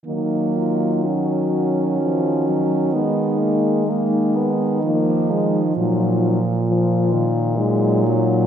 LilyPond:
<<
  \new Staff \with { instrumentName = "French horn" } { \time 3/4 \key ees \minor \tempo 4 = 64 ees'8 f'8 ges'2 | ees'2. | ees'8 r8 f'4 ees'4 | }
  \new Staff \with { instrumentName = "French horn" } { \time 3/4 \key ees \minor bes4 des'2 | ces'8 bes8 aes4 f4~ | f4. r8 ges4 | }
  \new Staff \with { instrumentName = "French horn" } { \clef bass \time 3/4 \key ees \minor ges2 f8 ges8 | aes4 bes8 ces'8 bes8 aes8 | ges8 r8 f8 ees8 aes8 ges8 | }
  \new Staff \with { instrumentName = "French horn" } { \clef bass \time 3/4 \key ees \minor ees2.~ | ees2. | bes,2. | }
>>